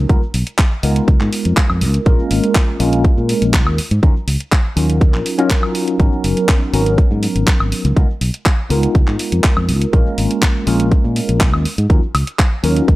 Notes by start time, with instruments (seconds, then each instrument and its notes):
0.09 tine electric piano G#3 B3 D#4 F4 A#4, kick, closed hi-hat, shaker
0.22 muted fingered electric bass stroke, shaker
0.34 fingered electric bass B1, open hi-hat
0.46 closed hi-hat, shaker
0.58 kick, clap, closed hi-hat
0.71 shaker
0.83 fingered electric bass C#2, tine electric piano G#3 B3 D#4 F4 A#4, open hi-hat
0.96 closed hi-hat, shaker
1.08 fingered electric bass C#2, kick, closed hi-hat, shaker
1.21 fingered electric bass G#2, clap, shaker
1.33 open hi-hat
1.45 fingered electric bass F2, closed hi-hat, shaker
1.57 muted fingered electric bass stroke, kick, clap, closed hi-hat
1.70 fingered electric bass F2, high woodblock, shaker
1.81 fingered electric bass C#2, open hi-hat
1.94 closed hi-hat, shaker
2.06 fingered electric bass A#1, tine electric piano G#3 A#3 C#4 F4 A#4, kick, closed hi-hat, shaker
2.19 shaker
2.31 fingered electric bass G#1, open hi-hat
2.43 closed hi-hat, shaker
2.55 kick, clap, closed hi-hat
2.68 shaker
2.79 fingered electric bass A#1, tine electric piano G#3 A#3 C#4 F4 A#4, open hi-hat
2.92 closed hi-hat, shaker
3.04 kick, closed hi-hat, shaker
3.17 fingered electric bass A#2, shaker
3.29 open hi-hat
3.42 fingered electric bass A#1, closed hi-hat, shaker
3.54 kick, clap, closed hi-hat
3.67 fingered electric bass D#2, high woodblock
3.78 muted fingered electric bass stroke, open hi-hat
3.91 fingered electric bass G#2, closed hi-hat, shaker
4.03 fingered electric bass D#2, tine electric piano F#3 C#4 D#4 F4 A#4, kick, closed hi-hat, shaker
4.16 muted fingered electric bass stroke, shaker
4.27 fingered electric bass C#2, open hi-hat
4.40 closed hi-hat, shaker
4.52 kick, clap, closed hi-hat
4.65 shaker
4.76 fingered electric bass D#2, tine electric piano F#3 C#4 D#4 F4 A#4, open hi-hat
4.89 closed hi-hat, shaker
5.01 kick, closed hi-hat, shaker
5.14 fingered electric bass A#1, clap, shaker
5.26 open hi-hat
5.38 tine electric piano F#3 C#4 D#4 F4 A#4, closed hi-hat, shaker
5.50 kick, clap, closed hi-hat
5.63 high woodblock, shaker
5.75 open hi-hat
5.87 closed hi-hat, shaker
5.99 fingered electric bass G#1, tine electric piano F#3 B3 C#4 D#4 A#4, kick, closed hi-hat, shaker
6.12 shaker
6.24 fingered electric bass F#1, open hi-hat
6.37 closed hi-hat, shaker
6.49 kick, clap, closed hi-hat
6.62 shaker
6.73 fingered electric bass G#1, tine electric piano F#3 B3 C#4 D#4 A#4, open hi-hat
6.86 closed hi-hat, shaker
6.98 kick, closed hi-hat, shaker
7.11 fingered electric bass G#2, shaker
7.23 open hi-hat
7.35 fingered electric bass G#1, closed hi-hat, shaker
7.47 kick, clap, closed hi-hat
7.60 fingered electric bass G#1, high woodblock, shaker
7.72 muted fingered electric bass stroke, open hi-hat
7.85 fingered electric bass C#2, closed hi-hat, shaker
7.96 tine electric piano G#3 B3 D#4 F4 A#4, kick, closed hi-hat, shaker
8.09 muted fingered electric bass stroke, shaker
8.21 fingered electric bass B1, open hi-hat
8.34 closed hi-hat, shaker
8.46 kick, clap, closed hi-hat
8.59 shaker
8.70 fingered electric bass C#2, tine electric piano G#3 B3 D#4 F4 A#4, open hi-hat
8.83 closed hi-hat, shaker
8.95 fingered electric bass C#2, kick, closed hi-hat, shaker
9.08 fingered electric bass G#2, clap, shaker
9.19 open hi-hat
9.32 fingered electric bass F2, closed hi-hat, shaker
9.44 muted fingered electric bass stroke, kick, clap, closed hi-hat
9.57 fingered electric bass F2, high woodblock, shaker
9.69 fingered electric bass C#2, open hi-hat
9.81 closed hi-hat, shaker
9.93 fingered electric bass A#1, tine electric piano G#3 A#3 C#4 F4 A#4, kick, closed hi-hat, shaker
10.06 shaker
10.18 fingered electric bass G#1, open hi-hat
10.31 closed hi-hat, shaker
10.42 kick, clap, closed hi-hat
10.56 shaker
10.66 fingered electric bass A#1, tine electric piano G#3 A#3 C#4 F4 A#4, open hi-hat
10.80 closed hi-hat, shaker
10.91 muted fingered electric bass stroke, kick, closed hi-hat, shaker
11.04 fingered electric bass A#2, shaker
11.16 open hi-hat
11.29 fingered electric bass A#1, closed hi-hat, shaker
11.41 kick, clap, closed hi-hat
11.54 fingered electric bass D#2, high woodblock, shaker
11.65 muted fingered electric bass stroke, open hi-hat
11.78 fingered electric bass G#2, closed hi-hat, shaker
11.90 fingered electric bass D#2, tine electric piano F#3 C#4 D#4 F4 A#4, kick, closed hi-hat, shaker
12.02 muted fingered electric bass stroke, shaker
12.14 fingered electric bass C#2, open hi-hat, high woodblock
12.27 closed hi-hat, shaker
12.39 kick, clap, closed hi-hat
12.52 shaker
12.63 fingered electric bass D#2, tine electric piano F#3 C#4 D#4 F4 A#4, open hi-hat
12.77 closed hi-hat, shaker
12.88 fingered electric bass D#2, kick, closed hi-hat, shaker